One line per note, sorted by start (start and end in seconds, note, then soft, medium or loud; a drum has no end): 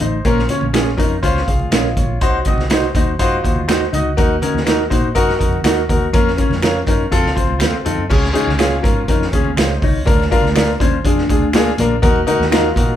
0.00 0.21 A1 medium
0.00 0.16 D#4 medium
0.00 0.48 D#4 medium
0.00 0.48 C5 medium
0.00 closed hi-hat medium
0.00 high conga medium
0.00 low conga medium
0.25 0.46 A#1 medium
0.25 0.40 A#3 medium
0.25 0.40 C#4 loud
0.25 0.41 F4 medium
0.25 0.41 A#4 loud
0.25 kick loud
0.25 closed hi-hat medium
0.38 snare soft
0.38 muted conga soft
0.49 0.65 C#4 medium
0.49 0.65 F4 medium
0.49 0.65 C#5 medium
0.49 closed hi-hat medium
0.49 high conga medium
0.61 0.93 A#1 medium
0.61 high conga medium
0.73 0.89 C#4 medium
0.73 0.88 C#4 medium
0.73 0.89 F4 medium
0.73 0.88 F4 medium
0.73 0.89 G#4 medium
0.73 0.88 A#4 medium
0.73 0.89 C#5 medium
0.73 finger snap medium
0.73 snare loud
0.73 closed hi-hat medium
0.86 muted conga soft
0.97 1.19 F2 medium
0.97 1.13 C#4 medium
0.97 1.15 D#4 medium
0.97 1.13 F4 medium
0.97 1.13 A#4 medium
0.97 kick medium
0.97 closed hi-hat medium
0.97 low conga medium
1.23 1.44 C#2 medium
1.23 1.38 C#4 loud
1.23 1.38 F4 medium
1.23 1.70 F4 medium
1.23 1.38 C5 loud
1.23 kick medium
1.23 closed hi-hat medium
1.23 muted conga soft
1.36 snare soft
1.36 muted conga soft
1.47 1.69 C2 medium
1.47 1.71 G#4 soft
1.47 1.71 F5 medium
1.47 kick medium
1.47 closed hi-hat medium
1.59 high conga medium
1.71 1.93 A#1 medium
1.71 1.86 C#4 medium
1.71 1.86 F4 medium
1.71 2.19 F4 medium
1.71 1.86 A#4 medium
1.71 1.86 C#5 medium
1.71 1.95 D#5 medium
1.71 finger snap medium
1.71 snare loud
1.71 closed hi-hat medium
1.71 muted conga soft
1.84 muted conga soft
1.97 2.18 A#1 medium
1.97 2.44 F4 medium
1.97 2.44 C#5 medium
1.97 kick medium
1.97 closed hi-hat medium
1.97 high conga medium
1.97 low conga medium
2.21 2.43 C2 medium
2.21 2.37 D#4 loud
2.21 2.37 F#4 medium
2.21 2.38 F#4 medium
2.21 2.37 C5 loud
2.21 kick medium
2.21 closed hi-hat medium
2.21 muted conga soft
2.45 2.63 C4 medium
2.45 2.62 D#4 medium
2.45 2.62 F#4 medium
2.45 2.62 D#5 medium
2.45 kick medium
2.45 closed hi-hat medium
2.45 high conga medium
2.57 2.89 C2 medium
2.57 snare soft
2.57 high conga medium
2.70 2.84 D#4 medium
2.70 2.87 D#4 medium
2.70 2.85 F#4 medium
2.70 2.87 F#4 medium
2.70 2.85 C5 medium
2.70 2.86 C5 medium
2.70 2.85 D#5 medium
2.70 finger snap medium
2.70 snare loud
2.70 closed hi-hat medium
2.83 muted conga soft
2.95 3.16 D#2 medium
2.95 3.11 D#4 medium
2.95 3.11 F#4 medium
2.95 3.11 C5 medium
2.95 kick medium
2.95 closed hi-hat medium
2.95 low conga medium
3.19 3.41 F#2 medium
3.19 3.35 D#4 loud
3.19 3.67 F4 medium
3.19 3.35 F#4 loud
3.19 3.35 C5 loud
3.19 kick medium
3.19 closed hi-hat medium
3.19 muted conga soft
3.32 muted conga soft
3.43 3.86 D#2 medium
3.43 3.59 D#4 medium
3.43 3.59 F#4 medium
3.43 3.59 C5 medium
3.43 kick medium
3.43 closed hi-hat medium
3.56 high conga medium
3.68 3.84 D#4 medium
3.68 3.82 D#4 medium
3.68 3.84 F#4 medium
3.68 3.83 F#4 medium
3.68 3.84 C5 medium
3.68 3.83 C5 medium
3.68 3.83 D#5 medium
3.68 finger snap loud
3.68 snare loud
3.68 closed hi-hat loud
3.68 muted conga soft
3.81 muted conga soft
3.93 4.14 C#2 medium
3.93 4.08 D#4 medium
3.93 4.09 D#4 medium
3.93 4.09 F#4 medium
3.93 4.09 D#5 loud
3.93 closed hi-hat medium
3.93 high conga medium
3.93 low conga medium
4.17 4.39 D#2 loud
4.17 4.33 D#4 loud
4.17 4.33 D#4 medium
4.17 4.33 F#4 loud
4.17 4.33 A#4 loud
4.17 kick loud
4.17 closed hi-hat medium
4.17 muted conga soft
4.42 4.58 C#4 medium
4.42 4.58 D#4 medium
4.42 4.58 F#4 medium
4.42 4.58 A#4 medium
4.42 closed hi-hat medium
4.42 high conga medium
4.54 4.86 D#2 medium
4.54 snare soft
4.54 high conga medium
4.66 4.82 D#4 medium
4.66 4.81 D#4 medium
4.66 4.82 F#4 medium
4.66 4.81 F#4 medium
4.66 4.82 A#4 medium
4.66 4.81 A#4 medium
4.66 4.81 D#5 medium
4.66 finger snap medium
4.66 snare medium
4.66 closed hi-hat medium
4.66 muted conga soft
4.78 muted conga soft
4.90 5.12 A#2 medium
4.90 5.06 D#4 medium
4.90 5.07 D#4 medium
4.90 5.06 F#4 medium
4.90 5.06 C5 medium
4.90 kick medium
4.90 closed hi-hat medium
4.90 low conga medium
5.15 5.37 F#2 medium
5.15 5.31 D#4 loud
5.15 5.31 F#4 loud
5.15 5.63 F#4 medium
5.15 5.31 A#4 loud
5.15 kick medium
5.15 closed hi-hat medium
5.29 snare soft
5.29 muted conga soft
5.39 5.62 F2 medium
5.39 5.55 D#4 medium
5.39 5.55 F#4 medium
5.39 5.55 A#4 medium
5.39 kick medium
5.39 closed hi-hat medium
5.53 high conga medium
5.64 5.85 D#2 medium
5.64 5.80 D#4 medium
5.64 5.79 D#4 medium
5.64 5.80 F#4 medium
5.64 6.11 F#4 medium
5.64 5.79 F#4 medium
5.64 5.80 A#4 medium
5.64 5.79 A#4 medium
5.64 5.80 D#5 medium
5.64 finger snap medium
5.64 snare loud
5.64 closed hi-hat loud
5.64 muted conga soft
5.89 6.11 D#2 medium
5.89 6.05 D#4 medium
5.89 6.05 F#4 medium
5.89 6.05 A#4 medium
5.89 kick medium
5.89 closed hi-hat medium
5.89 high conga medium
5.89 low conga medium
6.13 6.35 F2 loud
6.13 6.29 A#3 medium
6.13 6.29 C#4 loud
6.13 6.29 F4 medium
6.13 6.29 A#4 loud
6.13 kick loud
6.13 closed hi-hat medium
6.13 muted conga soft
6.28 snare soft
6.37 6.53 C#4 medium
6.37 6.54 C#4 medium
6.37 6.54 F4 medium
6.37 6.54 A#4 medium
6.37 kick medium
6.37 closed hi-hat medium
6.37 high conga medium
6.50 6.82 F2 medium
6.50 snare soft
6.50 high conga medium
6.62 6.78 C#4 medium
6.62 6.79 F4 medium
6.62 6.77 F4 medium
6.62 6.78 A#4 medium
6.62 6.77 A#4 medium
6.62 6.77 C#5 medium
6.62 6.77 F5 medium
6.62 finger snap medium
6.62 snare loud
6.62 closed hi-hat medium
6.62 muted conga soft
6.87 7.09 F#2 medium
6.87 7.03 C#4 medium
6.87 7.03 D#4 medium
6.87 7.03 F4 medium
6.87 7.03 A#4 medium
6.87 kick medium
6.87 closed hi-hat medium
6.87 low conga medium
7.11 7.23 F2 medium
7.11 7.28 C4 loud
7.11 7.58 F4 medium
7.11 7.28 F4 loud
7.11 7.28 A4 loud
7.11 kick medium
7.11 closed hi-hat medium
7.11 muted conga soft
7.26 7.36 C#2 medium
7.26 snare soft
7.35 7.48 C2 medium
7.35 7.52 C4 medium
7.35 7.52 F4 medium
7.35 7.52 C5 medium
7.35 kick medium
7.35 closed hi-hat medium
7.47 7.60 C#2 medium
7.47 high conga medium
7.59 7.72 D#2 medium
7.59 7.76 C4 medium
7.59 7.76 F4 medium
7.59 7.75 F4 medium
7.59 7.76 A4 medium
7.59 7.76 C5 medium
7.59 7.76 F5 medium
7.59 finger snap medium
7.59 snare medium
7.59 closed hi-hat medium
7.73 muted conga soft
7.85 7.97 F2 medium
7.85 8.01 C4 medium
7.85 8.01 D#4 medium
7.85 8.01 F4 medium
7.85 8.01 A4 medium
7.85 closed hi-hat medium
7.85 high conga medium
7.85 low conga medium
7.98 8.09 F#2 medium
8.10 8.32 C#2 medium
8.10 8.26 C#4 loud
8.10 8.26 F4 medium
8.10 8.26 G#4 loud
8.10 kick loud
8.10 crash medium
8.10 low conga medium
8.22 snare soft
8.22 muted conga soft
8.33 8.50 C#4 loud
8.33 8.51 D#4 medium
8.33 8.50 F4 loud
8.33 8.50 G#4 loud
8.33 closed hi-hat medium
8.33 high conga medium
8.46 8.79 C#2 medium
8.46 snare soft
8.46 high conga medium
8.59 8.75 C#4 medium
8.59 8.73 F4 medium
8.59 8.75 F4 medium
8.59 9.06 F4 medium
8.59 8.75 G#4 medium
8.59 8.73 G#4 medium
8.59 8.74 C#5 medium
8.59 8.74 F5 loud
8.59 finger snap medium
8.59 snare loud
8.59 closed hi-hat medium
8.82 9.05 G#2 medium
8.82 8.99 C#4 medium
8.82 8.99 F4 medium
8.82 8.99 A#4 medium
8.82 kick medium
8.82 closed hi-hat medium
8.82 low conga medium
9.08 9.29 F2 medium
9.08 9.24 C#4 medium
9.08 9.25 D#4 medium
9.08 9.24 F4 medium
9.08 9.24 A#4 medium
9.08 kick medium
9.08 closed hi-hat medium
9.08 muted conga soft
9.22 snare soft
9.32 9.54 D#2 medium
9.32 9.48 C#4 medium
9.32 9.50 C#4 medium
9.32 9.49 F4 medium
9.32 9.49 G#4 medium
9.32 kick medium
9.32 closed hi-hat medium
9.45 high conga medium
9.56 9.78 C#2 medium
9.56 9.81 D#4 medium
9.56 9.72 F4 medium
9.56 9.72 G#4 medium
9.56 9.81 C5 medium
9.56 9.72 C#5 medium
9.56 9.72 F5 medium
9.56 finger snap medium
9.56 snare loud
9.56 closed hi-hat loud
9.56 muted conga soft
9.70 muted conga soft
9.82 10.03 C2 medium
9.82 9.99 D#4 medium
9.82 10.04 F4 medium
9.82 10.29 C#5 medium
9.82 kick medium
9.82 open hi-hat medium
9.82 high conga medium
9.82 low conga medium
10.05 10.28 D2 loud
10.05 10.22 D4 loud
10.05 10.22 F4 medium
10.05 10.22 A#4 loud
10.05 kick loud
10.05 closed hi-hat medium
10.05 muted conga soft
10.05 low conga medium
10.20 snare soft
10.20 muted conga soft
10.31 10.47 D4 loud
10.31 10.47 F4 loud
10.31 10.47 F4 medium
10.31 10.47 A#4 loud
10.31 kick medium
10.31 closed hi-hat medium
10.31 high conga medium
10.44 10.76 D2 medium
10.44 snare soft
10.44 high conga medium
10.56 10.72 D4 medium
10.56 10.70 F4 medium
10.56 10.72 F4 medium
10.56 10.70 A#4 medium
10.56 10.72 A#4 medium
10.56 10.70 D5 medium
10.56 10.70 F5 medium
10.56 finger snap medium
10.56 snare loud
10.56 closed hi-hat medium
10.56 muted conga soft
10.80 11.01 D#2 medium
10.80 10.96 C#4 medium
10.80 10.96 D4 medium
10.80 10.96 F4 medium
10.80 10.96 C5 medium
10.80 kick loud
10.80 closed hi-hat medium
10.80 low conga medium
11.04 11.26 F2 medium
11.04 11.51 D4 medium
11.04 11.21 D4 medium
11.04 11.21 F4 medium
11.04 11.21 G#4 medium
11.04 kick medium
11.04 closed hi-hat medium
11.04 muted conga soft
11.18 snare soft
11.18 muted conga soft
11.29 11.71 D2 medium
11.29 11.45 D4 medium
11.29 11.45 F4 medium
11.29 11.46 G#4 medium
11.29 kick medium
11.29 closed hi-hat medium
11.42 high conga medium
11.53 11.69 A#3 medium
11.53 11.70 D4 loud
11.53 11.68 F4 medium
11.53 11.70 F4 loud
11.53 11.70 G#4 loud
11.53 11.68 A#4 medium
11.53 11.68 D5 medium
11.53 11.68 F5 medium
11.53 finger snap loud
11.53 snare loud
11.53 closed hi-hat medium
11.53 muted conga soft
11.68 muted conga soft
11.78 11.99 A#1 medium
11.78 11.94 A#3 medium
11.78 11.95 D4 medium
11.78 11.94 F4 medium
11.78 11.95 A#4 loud
11.78 closed hi-hat medium
11.78 high conga medium
11.78 low conga medium
12.02 12.24 D#2 loud
12.02 12.18 D#4 loud
12.02 12.18 F#4 loud
12.02 12.18 A#4 loud
12.02 kick loud
12.02 closed hi-hat medium
12.02 muted conga soft
12.02 low conga medium
12.16 muted conga soft
12.27 12.42 D#4 loud
12.27 12.43 D#4 medium
12.27 12.43 F#4 loud
12.27 12.43 A#4 loud
12.27 closed hi-hat medium
12.27 high conga medium
12.39 12.71 D#2 loud
12.39 snare soft
12.39 high conga medium
12.51 12.65 D#4 medium
12.51 12.68 D#4 medium
12.51 12.96 F4 medium
12.51 12.67 F#4 medium
12.51 12.66 F#4 medium
12.51 12.67 A#4 loud
12.51 12.66 A#4 medium
12.51 12.66 D#5 loud
12.51 finger snap loud
12.51 snare loud
12.51 closed hi-hat medium
12.51 muted conga soft
12.64 muted conga soft
12.76 12.96 A#2 medium
12.76 12.92 D#4 medium
12.76 12.92 F#4 medium
12.76 12.92 A#4 medium
12.76 kick medium
12.76 closed hi-hat medium
12.76 low conga medium